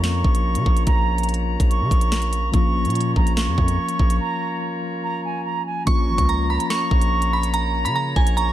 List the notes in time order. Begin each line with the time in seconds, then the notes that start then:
Already playing: F2 F3 A#3 C#4 F4 A#4 C#5 A#5
0.04 C#6, snare
0.24 A#1, kick
0.35 closed hi-hat
0.55 C#3, closed hi-hat
0.66 A#1, kick
0.77 closed hi-hat
0.87 A#1 A#5, kick, closed hi-hat
1.18 closed hi-hat
1.23 closed hi-hat
1.29 closed hi-hat
1.34 closed hi-hat
1.60 A#1, kick, closed hi-hat
1.70 C#6, closed hi-hat
1.81 C#3
1.91 A#1, kick, closed hi-hat
2.01 closed hi-hat
2.12 snare
2.22 closed hi-hat
2.33 closed hi-hat
2.52 A#1 F3 A#3 C#4 F4 A#4 C#5 C#6, kick, closed hi-hat
2.85 A#2, closed hi-hat
2.90 closed hi-hat
2.95 closed hi-hat
3.01 closed hi-hat
3.16 A#1 A#5, kick
3.27 closed hi-hat
3.37 C#6, snare
3.47 F2
3.58 F2, kick
3.68 closed hi-hat
3.89 closed hi-hat
3.99 A#1, kick
4.10 closed hi-hat
4.20 A#5
5.03 A#5
5.25 G#5
5.45 A#5
5.66 G#5
5.85 A#1 F3 A#3 C#4 F4 A#4 C#5 A#5 C#6, kick, closed hi-hat
6.08 G#1
6.18 C#2 C#6, kick, closed hi-hat
6.29 A#5, closed hi-hat
6.50 A#5 B5
6.60 closed hi-hat
6.70 C#6, snare
6.91 A#1, kick
7.01 closed hi-hat
7.22 closed hi-hat
7.33 B5
7.43 closed hi-hat
7.54 A#5, closed hi-hat
7.85 C#3 B5, closed hi-hat
7.96 A#5
8.16 A#1 G#5, kick
8.27 closed hi-hat
8.37 A#5 C#6, closed hi-hat